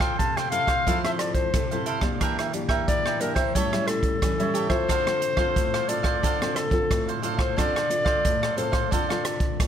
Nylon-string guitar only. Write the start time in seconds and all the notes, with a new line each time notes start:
Already playing: F3 C4 A4
0.19 C3
0.51 C4 E4 A4
0.86 F3 C4 E4 A4
1.04 C4 E4 A4
1.54 C3 C4 E4 A4
1.72 C4 E4 A4
2.02 A#3 D4 G4
2.21 E3
2.53 A#3 D4 G4
2.88 E3
3.20 A#3 D4 G4
3.55 A2 G3 C#4 E4
3.73 G3 C#4 E4
4.22 E3 G3 C#4 E4
4.39 G3 C#4 E4
4.69 C4 F4 A4
4.89 D3
5.06 C4 F4 A4
5.37 C4 F4 A4
5.56 A2
5.88 C4 F4 A4
6.22 D3
6.41 C4 F4 A4
6.71 C4 F4 A4
6.91 A2
7.22 C4 F4 A4
7.57 D3 C4 F4 A4
7.90 C4 F4 A4
8.25 A2
8.57 C4 F4 A4
8.92 D3 C4 F4 A4
9.10 C4 F4 A4
9.60 A2